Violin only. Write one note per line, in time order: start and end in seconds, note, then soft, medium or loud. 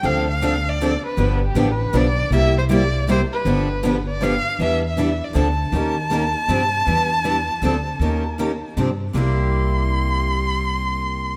0.05 0.29 F5 loud
0.30 0.71 F5 medium
0.69 1.05 D5 medium
1.06 1.42 B4 medium
1.47 1.73 G4 medium
1.71 1.98 B4 medium
1.97 2.33 D5 loud
2.35 2.55 E5 loud
2.58 2.64 C5 medium
2.73 3.07 D5 medium
3.11 3.21 C5 medium
3.32 4.04 B4 medium
4.09 4.24 D5 medium
4.23 4.60 F5 medium
4.63 4.83 E5 medium
4.87 5.26 E5 medium
5.24 5.37 D5 medium
5.38 8.74 A5 loud
9.16 11.37 C6 medium